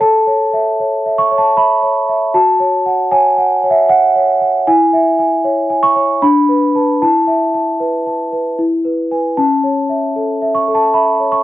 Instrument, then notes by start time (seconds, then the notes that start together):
celesta
0.01 A4 A5
0.27 C#5
0.53 E5
0.80 C#5
1.06 E5
1.18 C#6
1.31 C#5
1.38 A5
1.57 E5 B5
1.83 C#5
2.09 E5
2.34 F#4 A5
2.60 C#5
2.86 F#5
3.11 C#5 G#5
3.37 F#5
3.63 C#5
3.70 E5
3.89 F#5
4.16 C#5
4.41 F#5
4.67 E4 G#5
4.93 E5
5.19 G#5
5.44 C#5
5.70 G#5
5.83 C#6
5.96 C#5
6.22 D4 B5
6.49 B4
6.75 B4 A5
7.02 E4 A5
7.27 E5
7.54 A5
7.80 B4
8.06 A5
8.32 B4
8.59 E4
8.85 B4
9.11 B4 G#5
9.37 C#4 A5
9.64 C#5
9.89 E5
10.16 A4
10.42 E5
10.55 C#6
10.68 A4
10.75 A5
10.94 E5 B5
11.20 C#5
11.32 C#6